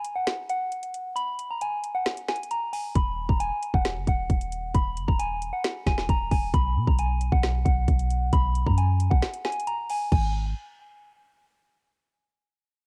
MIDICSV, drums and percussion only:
0, 0, Header, 1, 2, 480
1, 0, Start_track
1, 0, Tempo, 447761
1, 1249, Time_signature, 4, 2, 24, 8
1, 13789, End_track
2, 0, Start_track
2, 0, Title_t, "Drums"
2, 49, Note_on_c, 9, 42, 75
2, 156, Note_off_c, 9, 42, 0
2, 289, Note_on_c, 9, 38, 123
2, 289, Note_on_c, 9, 42, 76
2, 396, Note_off_c, 9, 42, 0
2, 397, Note_off_c, 9, 38, 0
2, 530, Note_on_c, 9, 42, 73
2, 637, Note_off_c, 9, 42, 0
2, 770, Note_on_c, 9, 42, 58
2, 877, Note_off_c, 9, 42, 0
2, 888, Note_on_c, 9, 42, 59
2, 996, Note_off_c, 9, 42, 0
2, 1009, Note_on_c, 9, 42, 75
2, 1116, Note_off_c, 9, 42, 0
2, 1248, Note_on_c, 9, 42, 77
2, 1355, Note_off_c, 9, 42, 0
2, 1489, Note_on_c, 9, 42, 70
2, 1596, Note_off_c, 9, 42, 0
2, 1729, Note_on_c, 9, 42, 96
2, 1836, Note_off_c, 9, 42, 0
2, 1969, Note_on_c, 9, 42, 77
2, 2076, Note_off_c, 9, 42, 0
2, 2207, Note_on_c, 9, 42, 66
2, 2208, Note_on_c, 9, 38, 117
2, 2315, Note_off_c, 9, 38, 0
2, 2315, Note_off_c, 9, 42, 0
2, 2328, Note_on_c, 9, 42, 65
2, 2435, Note_off_c, 9, 42, 0
2, 2449, Note_on_c, 9, 38, 87
2, 2449, Note_on_c, 9, 42, 41
2, 2528, Note_off_c, 9, 42, 0
2, 2528, Note_on_c, 9, 42, 52
2, 2556, Note_off_c, 9, 38, 0
2, 2608, Note_off_c, 9, 42, 0
2, 2608, Note_on_c, 9, 42, 69
2, 2689, Note_off_c, 9, 42, 0
2, 2689, Note_on_c, 9, 42, 69
2, 2796, Note_off_c, 9, 42, 0
2, 2929, Note_on_c, 9, 46, 81
2, 3036, Note_off_c, 9, 46, 0
2, 3167, Note_on_c, 9, 42, 78
2, 3168, Note_on_c, 9, 36, 114
2, 3275, Note_off_c, 9, 36, 0
2, 3275, Note_off_c, 9, 42, 0
2, 3528, Note_on_c, 9, 36, 93
2, 3636, Note_off_c, 9, 36, 0
2, 3647, Note_on_c, 9, 42, 94
2, 3754, Note_off_c, 9, 42, 0
2, 3888, Note_on_c, 9, 42, 76
2, 3995, Note_off_c, 9, 42, 0
2, 4009, Note_on_c, 9, 36, 91
2, 4116, Note_off_c, 9, 36, 0
2, 4127, Note_on_c, 9, 42, 75
2, 4128, Note_on_c, 9, 38, 121
2, 4234, Note_off_c, 9, 42, 0
2, 4235, Note_off_c, 9, 38, 0
2, 4367, Note_on_c, 9, 36, 94
2, 4367, Note_on_c, 9, 42, 71
2, 4474, Note_off_c, 9, 36, 0
2, 4475, Note_off_c, 9, 42, 0
2, 4608, Note_on_c, 9, 36, 90
2, 4608, Note_on_c, 9, 42, 59
2, 4715, Note_off_c, 9, 36, 0
2, 4715, Note_off_c, 9, 42, 0
2, 4729, Note_on_c, 9, 42, 60
2, 4836, Note_off_c, 9, 42, 0
2, 4848, Note_on_c, 9, 42, 73
2, 4955, Note_off_c, 9, 42, 0
2, 5088, Note_on_c, 9, 36, 111
2, 5088, Note_on_c, 9, 42, 79
2, 5195, Note_off_c, 9, 36, 0
2, 5196, Note_off_c, 9, 42, 0
2, 5329, Note_on_c, 9, 42, 72
2, 5436, Note_off_c, 9, 42, 0
2, 5449, Note_on_c, 9, 36, 95
2, 5556, Note_off_c, 9, 36, 0
2, 5570, Note_on_c, 9, 42, 92
2, 5677, Note_off_c, 9, 42, 0
2, 5809, Note_on_c, 9, 42, 75
2, 5916, Note_off_c, 9, 42, 0
2, 6048, Note_on_c, 9, 42, 79
2, 6049, Note_on_c, 9, 38, 123
2, 6156, Note_off_c, 9, 38, 0
2, 6156, Note_off_c, 9, 42, 0
2, 6287, Note_on_c, 9, 36, 94
2, 6289, Note_on_c, 9, 38, 91
2, 6289, Note_on_c, 9, 42, 65
2, 6394, Note_off_c, 9, 36, 0
2, 6396, Note_off_c, 9, 38, 0
2, 6396, Note_off_c, 9, 42, 0
2, 6409, Note_on_c, 9, 38, 74
2, 6516, Note_off_c, 9, 38, 0
2, 6528, Note_on_c, 9, 36, 87
2, 6529, Note_on_c, 9, 42, 70
2, 6636, Note_off_c, 9, 36, 0
2, 6636, Note_off_c, 9, 42, 0
2, 6768, Note_on_c, 9, 46, 81
2, 6769, Note_on_c, 9, 36, 91
2, 6876, Note_off_c, 9, 36, 0
2, 6876, Note_off_c, 9, 46, 0
2, 7008, Note_on_c, 9, 36, 113
2, 7010, Note_on_c, 9, 42, 76
2, 7116, Note_off_c, 9, 36, 0
2, 7117, Note_off_c, 9, 42, 0
2, 7369, Note_on_c, 9, 36, 97
2, 7476, Note_off_c, 9, 36, 0
2, 7489, Note_on_c, 9, 42, 95
2, 7596, Note_off_c, 9, 42, 0
2, 7728, Note_on_c, 9, 42, 78
2, 7835, Note_off_c, 9, 42, 0
2, 7849, Note_on_c, 9, 36, 93
2, 7956, Note_off_c, 9, 36, 0
2, 7968, Note_on_c, 9, 42, 78
2, 7969, Note_on_c, 9, 38, 119
2, 8075, Note_off_c, 9, 42, 0
2, 8076, Note_off_c, 9, 38, 0
2, 8207, Note_on_c, 9, 36, 95
2, 8209, Note_on_c, 9, 42, 68
2, 8314, Note_off_c, 9, 36, 0
2, 8316, Note_off_c, 9, 42, 0
2, 8448, Note_on_c, 9, 36, 89
2, 8448, Note_on_c, 9, 42, 57
2, 8555, Note_off_c, 9, 36, 0
2, 8555, Note_off_c, 9, 42, 0
2, 8568, Note_on_c, 9, 42, 61
2, 8676, Note_off_c, 9, 42, 0
2, 8688, Note_on_c, 9, 42, 74
2, 8795, Note_off_c, 9, 42, 0
2, 8927, Note_on_c, 9, 42, 78
2, 8928, Note_on_c, 9, 36, 114
2, 9034, Note_off_c, 9, 42, 0
2, 9035, Note_off_c, 9, 36, 0
2, 9168, Note_on_c, 9, 42, 73
2, 9275, Note_off_c, 9, 42, 0
2, 9289, Note_on_c, 9, 36, 94
2, 9396, Note_off_c, 9, 36, 0
2, 9408, Note_on_c, 9, 42, 95
2, 9515, Note_off_c, 9, 42, 0
2, 9647, Note_on_c, 9, 42, 76
2, 9754, Note_off_c, 9, 42, 0
2, 9769, Note_on_c, 9, 36, 96
2, 9876, Note_off_c, 9, 36, 0
2, 9888, Note_on_c, 9, 38, 122
2, 9888, Note_on_c, 9, 42, 65
2, 9995, Note_off_c, 9, 42, 0
2, 9996, Note_off_c, 9, 38, 0
2, 10008, Note_on_c, 9, 42, 67
2, 10115, Note_off_c, 9, 42, 0
2, 10128, Note_on_c, 9, 38, 87
2, 10128, Note_on_c, 9, 42, 41
2, 10208, Note_off_c, 9, 42, 0
2, 10208, Note_on_c, 9, 42, 55
2, 10235, Note_off_c, 9, 38, 0
2, 10288, Note_off_c, 9, 42, 0
2, 10288, Note_on_c, 9, 42, 68
2, 10369, Note_off_c, 9, 42, 0
2, 10369, Note_on_c, 9, 42, 73
2, 10476, Note_off_c, 9, 42, 0
2, 10609, Note_on_c, 9, 46, 81
2, 10716, Note_off_c, 9, 46, 0
2, 10848, Note_on_c, 9, 36, 107
2, 10849, Note_on_c, 9, 49, 86
2, 10956, Note_off_c, 9, 36, 0
2, 10956, Note_off_c, 9, 49, 0
2, 13789, End_track
0, 0, End_of_file